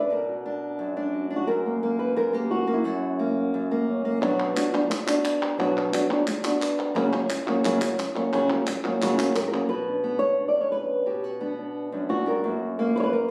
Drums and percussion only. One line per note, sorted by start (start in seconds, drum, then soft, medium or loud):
4.57 clap medium
4.74 clap medium
4.91 clap medium
5.08 clap medium
5.25 clap medium
5.94 clap medium
6.27 clap medium
6.44 clap medium
6.62 clap medium
7.30 clap medium
7.65 clap medium
7.82 clap loud
7.99 clap medium
8.67 clap medium
9.02 clap medium
9.19 clap medium
9.36 clap medium